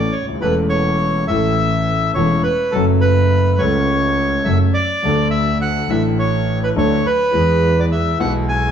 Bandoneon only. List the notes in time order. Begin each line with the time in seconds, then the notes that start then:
Already playing: D5
0.12 C#5
0.41 B4
0.69 C#5
1.28 E5
2.14 C#5
2.43 B4
2.72 A4
3.01 B4
3.59 C#5
4.45 E5
4.74 D5
5.31 E5
5.61 F#5
5.90 E5
6.19 C#5
6.64 B4
6.78 C#5
7.06 B4
7.80 D5
7.92 E5
8.20 F#5
8.49 G#5